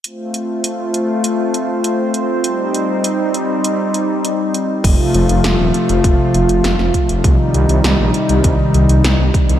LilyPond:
<<
  \new Staff \with { instrumentName = "Analog synth pad" } { \time 4/4 \key f \mixolydian \tempo 4 = 100 << { <c' c''>1~ | <c' c''>1 | <f f'>1 | <ees ees'>1 | } \\ { <a f'>1 | <g ees'>1 | <c a>1 | <c g>1 | } >> }
  \new Staff \with { instrumentName = "Detuned saw bass" } { \clef bass \time 4/4 \key f \mixolydian r1 | r1 | f,,16 r16 f,,16 f,,16 f,,16 ees,,16 r16 f,,16 f,,16 r16 f,,16 f,,16 f,,16 f,,16 r16 f,,16 | c,16 r16 c,16 c,16 c,16 bes,,16 r16 c,16 c,16 r16 c,16 c,16 c,16 c,16 r16 c,16 | }
  \new DrumStaff \with { instrumentName = "Drums" } \drummode { \time 4/4 hh8 hh8 hh8 hh8 hh8 hh8 hh8 hh8 | hh8 hh8 hh8 hh8 hh8 hh8 hh8 hh8 | <cymc hh bd>8 hh16 hh16 <hh sn>8 hh16 hh16 <hh bd>8 hh16 hh16 <hh sn>16 sn16 <hh bd>16 hh16 | <hh bd>8 hh16 hh16 <hh sn>8 hh16 hh16 <hh bd>8 hh16 hh16 <hh sn>8 <hh bd>16 hh16 | }
>>